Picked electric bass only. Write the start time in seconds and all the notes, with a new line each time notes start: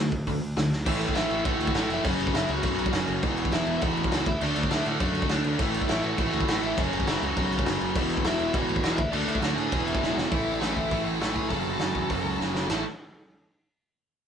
0.00 D2
0.12 D2
0.27 D2
0.42 D2
0.57 D2
0.87 A1
1.16 A1
1.31 A1
1.45 A1
1.60 D2
1.74 A1
1.90 F1
2.05 F#1
2.20 F#1
2.34 F#1
2.49 C#2
2.64 B1
2.94 F#1
3.08 F#1
3.23 E1
3.53 E1
3.67 E1
3.82 E1
3.97 A1
4.12 C#2
4.27 D2
4.42 D2
4.57 D2
4.71 D2
4.86 A2
5.00 F#2
5.31 D2
5.45 D2
5.59 A1
5.91 A1
6.04 A1
6.19 A1
6.33 D2
6.48 A1
6.63 A1
6.78 F#1
6.93 F#1
7.07 F#1
7.22 C#2
7.37 B1
7.67 F#1
7.81 F#1
7.96 E1
8.25 E1
8.39 E1
8.54 E1
8.69 A1
8.83 E1
8.98 D2
9.14 D2
9.28 D2
9.43 D2
9.58 A2
9.73 E1
10.03 E1
10.17 E1
10.32 A1
10.47 A1
10.62 A1
10.91 A1
11.06 A1
11.21 A1
11.51 F#1
11.65 F#1
11.79 F#1
11.95 E1
12.10 F#1
12.24 C#2
12.40 F#1
12.70 A1